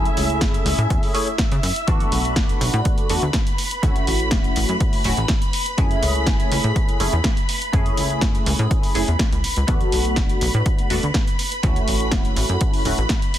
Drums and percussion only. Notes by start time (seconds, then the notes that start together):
0.05 closed hi-hat
0.17 open hi-hat
0.30 closed hi-hat
0.41 kick, snare, closed hi-hat
0.54 closed hi-hat
0.66 open hi-hat
0.79 closed hi-hat
0.90 kick, closed hi-hat
1.03 open hi-hat
1.15 open hi-hat
1.27 closed hi-hat
1.38 kick, snare, closed hi-hat
1.52 closed hi-hat
1.63 open hi-hat
1.76 closed hi-hat
1.88 kick, closed hi-hat
2.00 closed hi-hat
2.12 open hi-hat
2.25 closed hi-hat
2.36 kick, snare, closed hi-hat
2.49 closed hi-hat
2.61 open hi-hat
2.74 closed hi-hat
2.85 kick, closed hi-hat
2.98 closed hi-hat
3.10 open hi-hat
3.22 closed hi-hat
3.33 kick, snare, closed hi-hat
3.47 closed hi-hat
3.58 open hi-hat
3.71 closed hi-hat
3.83 kick, closed hi-hat
3.96 closed hi-hat
4.07 open hi-hat
4.20 closed hi-hat
4.31 kick, snare, closed hi-hat
4.44 closed hi-hat
4.56 open hi-hat
4.69 closed hi-hat
4.80 kick, closed hi-hat
4.93 open hi-hat
5.04 open hi-hat
5.17 closed hi-hat
5.28 kick, snare, closed hi-hat
5.42 closed hi-hat
5.53 open hi-hat
5.66 closed hi-hat
5.78 kick, closed hi-hat
5.91 closed hi-hat
6.03 open hi-hat
6.15 closed hi-hat
6.26 kick, snare, closed hi-hat
6.40 closed hi-hat
6.52 open hi-hat
6.64 closed hi-hat
6.76 kick, closed hi-hat
6.89 closed hi-hat
7.00 open hi-hat
7.13 closed hi-hat
7.24 kick, snare, closed hi-hat
7.37 closed hi-hat
7.49 open hi-hat
7.62 closed hi-hat
7.73 kick, closed hi-hat
7.86 closed hi-hat
7.97 open hi-hat
8.10 closed hi-hat
8.21 kick, snare, closed hi-hat
8.35 closed hi-hat
8.46 open hi-hat
8.59 closed hi-hat
8.71 kick, closed hi-hat
8.83 open hi-hat
8.95 open hi-hat
9.08 closed hi-hat
9.19 kick, snare, closed hi-hat
9.32 closed hi-hat
9.44 open hi-hat
9.56 closed hi-hat
9.68 kick, closed hi-hat
9.81 closed hi-hat
9.92 open hi-hat
10.05 closed hi-hat
10.16 kick, snare, closed hi-hat
10.29 closed hi-hat
10.41 open hi-hat
10.54 closed hi-hat
10.66 kick, closed hi-hat
10.79 closed hi-hat
10.90 open hi-hat
11.03 closed hi-hat
11.14 kick, snare, closed hi-hat
11.27 closed hi-hat
11.39 open hi-hat
11.52 closed hi-hat
11.63 kick, closed hi-hat
11.76 closed hi-hat
11.88 open hi-hat
12.00 closed hi-hat
12.12 kick, snare, closed hi-hat
12.25 closed hi-hat
12.36 open hi-hat
12.49 closed hi-hat
12.61 kick, closed hi-hat
12.74 open hi-hat
12.85 open hi-hat
12.98 closed hi-hat
13.09 kick, snare, closed hi-hat
13.22 closed hi-hat
13.34 open hi-hat